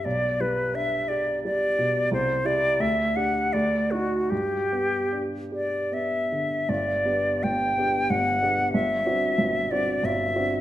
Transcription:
<<
  \new Staff \with { instrumentName = "Flute" } { \time 3/4 \key g \mixolydian \tempo 4 = 86 d''8 b'8 e''8 d''8 d''4 | \key g \major c''8 d''8 e''8 fis''8 d''8 fis'8 | g'4. d''8 e''4 | d''4 g''4 fis''4 |
e''4. d''8 e''4 | }
  \new Staff \with { instrumentName = "Grand piano" } { \time 3/4 \key g \mixolydian b,,8 g8 d'8 g'8 g8 b,8 | \key g \major c,8 <e' g'>8 d,8 <d' g'>8 d,8 <ees' fis'>8 | g,8 b8 d'8 g'8 b8 d8 | <g,, g,>8 <b d' g'>8 <g,, g,>8 <b d' g'>8 <g,, g,>8 <b d' g'>8 |
<g,, g,>8 <c' d' fis'>8 <g,, g,>8 <c' d' fis'>8 <g,, g,>8 <c' d' fis'>8 | }
>>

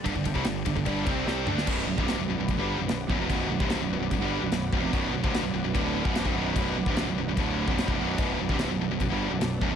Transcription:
<<
  \new Staff \with { instrumentName = "Analog synth pad" } { \time 4/4 \key b \phrygian \tempo 4 = 148 << { <g d' g''>1 | <b fis' d''>1~ | <b fis' d''>1~ | <b fis' d''>1~ |
<b fis' d''>1~ | <b fis' d''>1 | } \\ { a'1 | b'1~ | b'1~ | b'1~ |
b'1 | a'1 | } >> }
  \new Staff \with { instrumentName = "Distorted electric guitar" } { \clef bass \time 4/4 \key b \phrygian <g, d>16 <g, d>16 <g, d>16 <c g>16 <g, d>8 <g, d>16 <g, d>16 <g, d g>8 <c g c'>8 <c g c'>8 <d a d'>8 | <b,, fis, b,>8 <b,, fis,>16 <c, g, c>8 <b,, fis,>16 <b,, fis,>16 <b,, fis,>16 <b,, fis,>16 <g, d g>8 <b,, fis,>16 <b,, fis,>8 <b,, fis,>16 <eis, c>16 | <b,, fis, b,>8 <b,, fis,>16 <c, g, c>8 <b,, fis,>16 <b,, fis,>16 <b,, fis,>16 <b,, fis,>16 <g, d g>8 <b,, fis,>16 <b,, fis,>8 <b,, fis,>16 <eis, c>16 | <b,, fis, b,>8 <b,, fis,>16 <c, g, c>8 <b,, fis,>16 <b,, fis,>16 <b,, fis,>16 <d, a, d>8. <b,, fis, b,>8 <c, g,>16 <b,, fis, b,>8 |
<b,, fis, b,>8 <b,, fis,>16 <c, g, c>8 <b,, fis,>16 <b,, fis,>16 <b,, fis,>16 <d, a, d>8. <b,, fis, b,>8 <c, g,>16 <b,, fis, b,>8 | <b,, fis, b,>8 <b,, fis,>16 <c, g, c>8 <b,, fis,>16 <b,, fis,>16 <b,, fis,>16 <b,, fis,>16 <g, d g>8 <b,, fis,>16 <b,, fis,>8 <b,, fis,>16 eis,16 | }
  \new Staff \with { instrumentName = "Distorted electric guitar" } { \clef bass \time 4/4 \key b \phrygian <g, d>16 <g, d>16 <g, d>16 <c g>16 <g, d>8 <g, d>16 <g, d>16 <g, d g>8 <c g c'>8 <c g c'>8 <d a d'>8 | <b,, fis, b,>8 <b,, fis,>16 <c, g, c>8 <b,, fis,>16 <b,, fis,>16 <b,, fis,>16 <b,, fis,>16 <g, d g>8 <b,, fis,>16 <b,, fis,>8 <b,, fis,>16 <eis, c>16 | <b,, fis, b,>8 <b,, fis,>16 <c, g, c>8 <b,, fis,>16 <b,, fis,>16 <b,, fis,>16 <b,, fis,>16 <g, d g>8 <b,, fis,>16 <b,, fis,>8 <b,, fis,>16 <eis, c>16 | <b,, fis, b,>8 <b,, fis,>16 <c, g, c>8 <b,, fis,>16 <b,, fis,>16 <b,, fis,>16 <d, a, d>8. <b,, fis, b,>8 <c, g,>16 <b,, fis, b,>8 |
<b,, fis, b,>8 <b,, fis,>16 <c, g, c>8 <b,, fis,>16 <b,, fis,>16 <b,, fis,>16 <d, a, d>8. <b,, fis, b,>8 <c, g,>16 <b,, fis, b,>8 | <b,, fis, b,>8 <b,, fis,>16 <c, g, c>8 <b,, fis,>16 <b,, fis,>16 <b,, fis,>16 <b,, fis,>16 <g, d g>8 <b,, fis,>16 <b,, fis,>8 <b,, fis,>16 <eis, c>16 | }
  \new Staff \with { instrumentName = "Picked electric bass" } { \clef bass \time 4/4 \key b \phrygian g,,16 g,,16 g,,16 c,16 g,,8 g,,16 g,,16 g,,8 c,8 c,8 d,8 | b,,,8 b,,,16 c,,8 b,,,16 b,,,16 b,,,16 b,,,16 g,,8 b,,,16 b,,,8 b,,,16 eis,,16 | b,,,8 b,,,16 c,,8 b,,,16 b,,,16 b,,,16 b,,,16 g,,8 b,,,16 b,,,8 b,,,16 eis,,16 | b,,,8 b,,,16 c,,8 b,,,16 b,,,16 b,,,16 d,,8. b,,,8 c,,16 b,,,8 |
b,,,8 b,,,16 c,,8 b,,,16 b,,,16 b,,,16 d,,8. b,,,8 c,,16 b,,,8 | b,,,8 b,,,16 c,,8 b,,,16 b,,,16 b,,,16 b,,,16 g,,8 b,,,16 b,,,8 b,,,16 eis,,16 | }
  \new DrumStaff \with { instrumentName = "Drums" } \drummode { \time 4/4 <bd cymr>16 bd16 <bd cymr>16 bd16 <cymr sn>8 <bd cymr>16 bd16 <bd cymr>8 <bd cymr>8 sn8 toml16 sn16 | <cymc bd>8. bd16 <cymc sn>4 <cymc bd>4 <cymc sn>8 bd8 | <cymc bd>8. bd16 <cymc sn>4 <cymc bd>4 <cymc sn>8 bd8 | <cymc bd>8. bd16 <cymc sn>4 <cymc bd>8. bd16 <cymc sn>16 bd8. |
<cymc bd>8. bd16 <cymc sn>4 <cymc bd>8. bd16 <cymc sn>16 bd8. | <cymc bd>8. bd16 <cymc sn>4 <cymc bd>4 <cymc sn>8 bd8 | }
>>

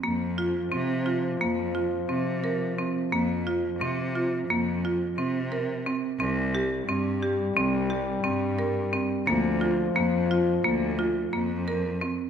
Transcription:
<<
  \new Staff \with { instrumentName = "Marimba" } { \time 9/8 \key c \dorian \tempo 4. = 59 bes8 f'8 c'8 f'8 bes8 f'8 c'8 bes'8 c'8 | bes8 f'8 c'8 f'8 bes8 f'8 c'8 bes'8 c'8 | c'8 g'8 c'8 g'8 c'8 g'8 c'8 bes'8 c'8 | bes8 f'8 bes8 f'8 bes8 f'8 bes8 bes'8 c'8 | }
  \new Staff \with { instrumentName = "French horn" } { \clef bass \time 9/8 \key c \dorian f1~ f8~ | f1 r8 | g1~ g8 | f1 r8 | }
  \new Staff \with { instrumentName = "Cello" } { \clef bass \time 9/8 \key c \dorian f,4 c4 f,4 c4. | f,4 c4 f,4 c4. | c,4 g,4 c,4 g,4. | d,4 f,4 d,4 f,4. | }
>>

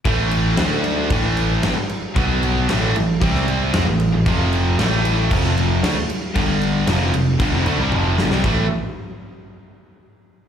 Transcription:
<<
  \new Staff \with { instrumentName = "Distorted electric guitar" } { \clef bass \time 4/4 \key a \minor \tempo 4 = 115 <a, e a>4 <d a d'>4 <a, e a>4 <g, d>16 r8. | <b, fis b>4 <a, e a>8 <a, e>8 <c g c'>4 <f c'>16 <a, e>8 <a, e>16 | <f, c f>4 <a, e a>4 <f, c f>4 <d a>16 r8. | <g, d g>4 <f, c f>8 <f, c>8 <g, d>16 <f, c>16 <d a>16 <c g>16 <f, c f>8 <g, d>16 <c g>16 |
<a, e a>8 r2. r8 | }
  \new Staff \with { instrumentName = "Overdriven electric guitar" } { \clef bass \time 4/4 \key a \minor <a, e a>4 <d a d'>4 <a, e a>4 <g, d>16 r8. | <b, fis b>4 <a, e a>8 <a, e>8 <c g c'>4 <f c'>16 <a, e>8 <a, e>16 | <f, c f>4 <a, e a>4 <f, c f>4 <d a>16 r8. | <g, d g>4 <f, c f>8 <f, c>8 <g, d>16 <f, c>16 <d a>16 <c g>16 <f, c f>8 <g, d>16 <c g>16 |
<a, e a>8 r2. r8 | }
  \new Staff \with { instrumentName = "Overdriven electric guitar" } { \clef bass \time 4/4 \key a \minor <a, e a>4 <d a d'>4 <a, e a>4 <g, d>16 r8. | <b, fis b>4 <a, e a>8 <a, e>8 <c g c'>4 <f c'>16 <a, e>8 <a, e>16 | <f, c f>4 <a, e a>4 <f, c f>4 <d a>16 r8. | <g, d g>4 <f, c f>8 <f, c>8 <g, d>16 <f, c>16 <d a>16 <c g>16 <f, c f>8 <g, d>16 <c g>16 |
<a, e a>8 r2. r8 | }
  \new Staff \with { instrumentName = "Picked electric bass" } { \clef bass \time 4/4 \key a \minor a,,4 d,4 a,,4 g,,16 r8. | b,,4 a,,8 a,,8 c,4 f,16 a,,8 a,,16 | f,,4 a,,4 f,,4 d,16 r8. | g,,4 f,,8 f,,8 g,,16 f,,16 d,16 c,16 f,,8 g,,16 c,16 |
a,,8 r2. r8 | }
  \new DrumStaff \with { instrumentName = "Drums" } \drummode { \time 4/4 <cymc bd>8 cymc8 <cymc sn>8 cymc8 <cymc bd>8 cymc8 <cymc sn>8 cymc8 | <cymc bd>8 cymc8 <cymc sn>8 cymc8 <cymc bd>16 sn16 cymc8 <cymc sn>8 cymc8 | <cymc bd>8 cymc8 <cymc sn>8 cymc8 <cymc bd>16 sn16 cymc8 <cymc sn>8 cymc8 | <cymc bd>8 cymc8 <cymc sn>8 cymc8 <cymc bd>8 cymc8 tommh8 sn16 sn16 |
<cymc bd>4 r4 r4 r4 | }
>>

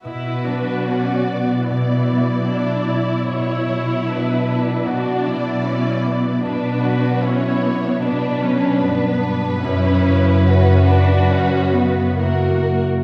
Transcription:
<<
  \new Staff \with { instrumentName = "Violin section" } { \time 4/4 \key b \minor \tempo 4 = 74 b'4 d''4 d''2 | cis''4 b'4 d''2 | b'4 cis''4 b'2~ | b'2. ais'8. r16 | }
  \new Staff \with { instrumentName = "Violin section" } { \time 4/4 \key b \minor fis'2 e'2~ | e'4 d'8 d'8 fis'8 e'4. | d'8 fis'8 e'4 d'2 | e'4 fis'2 fis'8. r16 | }
  \new Staff \with { instrumentName = "Viola section" } { \time 4/4 \key b \minor e'8 d'8 cis'8 b4. d'8 e'8~ | e'2 d'4 cis'8 b8 | d'4 cis'8 b8 d'8 cis'8 b4 | cis'4 cis'8 d'8 cis'8 b8 ais8. r16 | }
  \new Staff \with { instrumentName = "Harp" } { \time 4/4 \key b \minor b,8 fis8 fis'8 d'8 b,8 fis8 fis'8 d'8 | b,8 fis8 fis'8 d'8 b,8 fis8 fis'8 d'8 | b,8 fis8 fis'8 d'8 b,8 fis8 fis'8 d'8 | fis,8 cis8 e'8 cis'8 fis,8 cis8 e'8 cis'8 | }
  \new Staff \with { instrumentName = "Cello section" } { \clef bass \time 4/4 \key b \minor b,1 | b,1 | b,2. g,4 | fis,2.~ fis,8. r16 | }
>>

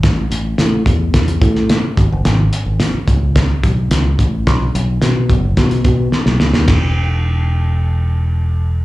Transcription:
<<
  \new Staff \with { instrumentName = "Fingered electric bass" } { \clef bass \time 4/4 \key fis \dorian \tempo 4 = 108 a,,8 a,,8 a,8 e,8 e,8 a,8. r16 gis,,16 fis,,16 | gis,,8 r16 gis,,16 r8 cis,4 b,,8 cis,8 a,,8 | b,,8 b,,8 b,8 fis,,8 b,8 b,8 r16 b,,16 cis,16 dis,16 | e,,1 | }
  \new DrumStaff \with { instrumentName = "Drums" } \drummode { \time 4/4 <hh bd sn>8 hh8 <hh sn>8 <hh bd>8 <hh bd sn>16 hh16 <hh bd>16 sn16 <hh sn>8 <hh bd>8 | <hh sn>8 hh8 <hh sn>8 <hh bd>8 <hh bd sn>8 <hh bd>8 <hh sn>8 <hh bd>8 | <hh bd sn>8 hh8 <hh sn>8 <hh bd>8 <hh bd sn>16 hh16 <hh bd>8 sn16 sn16 sn16 sn16 | <bd rb sn>4 r4 r4 r4 | }
>>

